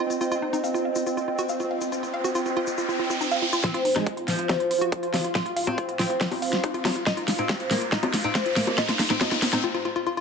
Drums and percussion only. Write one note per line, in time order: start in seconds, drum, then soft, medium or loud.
0.10 shaker medium
0.21 shaker medium
0.32 shaker soft
0.54 shaker medium
0.64 shaker medium
0.75 shaker soft
0.95 shaker medium
1.06 shaker medium
1.17 shaker soft
1.38 shaker medium
1.49 shaker medium
1.60 shaker soft
1.81 shaker medium
1.92 shaker medium
2.03 shaker soft
2.25 shaker medium
2.35 shaker medium
2.46 shaker soft
2.67 shaker medium
2.77 shaker medium
2.89 shaker soft
3.10 shaker medium
3.21 shaker medium
3.31 shaker soft
3.52 shaker medium
3.64 kick loud
3.64 snare soft
3.64 closed hi-hat medium
3.74 closed hi-hat medium
3.85 open hi-hat loud
3.96 snare soft
3.96 closed hi-hat medium
3.96 high bongo soft
4.07 kick loud
4.07 closed hi-hat medium
4.17 closed hi-hat medium
4.28 snare medium
4.28 open hi-hat loud
4.39 closed hi-hat medium
4.49 kick loud
4.49 snare medium
4.49 closed hi-hat medium
4.49 high bongo medium
4.60 closed hi-hat medium
4.71 open hi-hat loud
4.82 closed hi-hat medium
4.92 kick loud
4.92 closed hi-hat medium
5.03 closed hi-hat medium
5.14 snare medium
5.14 open hi-hat loud
5.14 high bongo soft
5.24 closed hi-hat medium
5.35 kick loud
5.35 snare medium
5.35 closed hi-hat medium
5.46 closed hi-hat medium
5.57 open hi-hat loud
5.67 closed hi-hat medium
5.67 high bongo medium
5.78 kick loud
5.78 closed hi-hat medium
5.89 closed hi-hat medium
5.99 snare medium
5.99 open hi-hat loud
6.10 closed hi-hat medium
6.21 kick loud
6.21 snare medium
6.21 closed hi-hat medium
6.32 open hi-hat medium
6.32 high bongo soft
6.42 open hi-hat loud
6.53 snare medium
6.53 closed hi-hat medium
6.64 kick loud
6.64 closed hi-hat medium
6.74 closed hi-hat medium
6.85 snare medium
6.85 open hi-hat loud
6.85 high bongo medium
6.96 closed hi-hat medium
7.07 kick loud
7.07 snare medium
7.07 closed hi-hat medium
7.17 closed hi-hat medium
7.28 snare medium
7.28 open hi-hat loud
7.39 closed hi-hat medium
7.49 kick loud
7.49 snare medium
7.49 closed hi-hat medium
7.49 high bongo soft
7.60 closed hi-hat medium
7.71 snare medium
7.71 open hi-hat loud
7.81 closed hi-hat medium
7.92 kick loud
7.92 snare medium
7.92 closed hi-hat medium
8.03 closed hi-hat medium
8.03 high bongo medium
8.14 snare medium
8.14 open hi-hat loud
8.24 closed hi-hat medium
8.35 kick loud
8.35 snare medium
8.35 closed hi-hat medium
8.46 closed hi-hat medium
8.56 snare medium
8.56 open hi-hat loud
8.67 closed hi-hat medium
8.67 high bongo soft
8.78 kick loud
8.78 snare medium
8.78 closed hi-hat medium
8.89 snare medium
8.89 closed hi-hat medium
8.99 snare medium
8.99 open hi-hat loud
9.10 snare medium
9.10 closed hi-hat soft
9.21 kick loud
9.21 snare loud
9.21 closed hi-hat medium
9.21 high bongo medium
9.32 snare medium
9.32 closed hi-hat medium
9.42 snare loud
9.42 open hi-hat loud
9.53 snare medium
9.53 closed hi-hat medium